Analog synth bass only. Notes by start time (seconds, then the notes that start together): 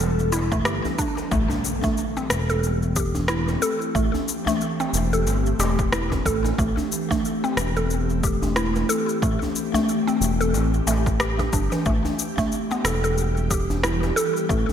Already playing: E1
0.65 G1
1.31 A1
2.30 E1
3.95 A1
4.93 E1
5.26 G1
5.59 E1
6.26 A1
6.58 A1
7.57 E1
9.22 A1
10.21 E1
10.54 A1
10.87 A1
11.53 G1
11.86 A1
12.84 E1
14.49 A1